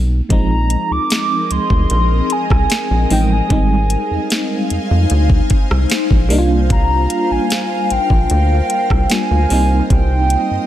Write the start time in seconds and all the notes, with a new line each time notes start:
Already playing: B1
0.29 A#1 F3 G#3 C4 D#4 G#4 A#4 D#5 A#5, kick, closed hi-hat
0.70 closed hi-hat
0.91 D2 D6
1.10 snare, closed hi-hat
1.51 D2 C6, closed hi-hat
1.70 D2, kick
1.90 A#1, closed hi-hat
2.30 G#5, closed hi-hat
2.50 C2, kick, cross-stick
2.70 snare, closed hi-hat
2.91 A#1
3.10 A1 F3 G#3 C4 D#4 G5, open hi-hat
3.32 G#5
3.49 G#1 G3 G#3 C4 D#4 C5 F5 G#5, kick, closed hi-hat
3.90 closed hi-hat
4.11 F2
4.30 snare, closed hi-hat
4.70 F2, closed hi-hat
4.91 F2
5.10 D2, closed hi-hat
5.30 kick
5.50 kick, closed hi-hat
5.71 C2, cross-stick
5.90 snare, closed hi-hat
6.11 A#1, kick
6.29 C2 G3 A#3 D4 D#4 F4 A#4 F5, open hi-hat
6.38 F4
6.70 A#5, kick, closed hi-hat
7.10 closed hi-hat
7.31 A#1 G#5
7.50 snare, closed hi-hat
7.90 A#1 G5, closed hi-hat
8.10 A#1, kick
8.30 D2, closed hi-hat
8.70 closed hi-hat
8.90 C2, kick, cross-stick
9.10 G3 A#3 D4 F4 G#5, snare, closed hi-hat
9.31 D2
9.49 C2 G3 A#3 C4 D#4 D#5, open hi-hat
9.90 C2 G5, kick, closed hi-hat
10.30 closed hi-hat
10.51 G2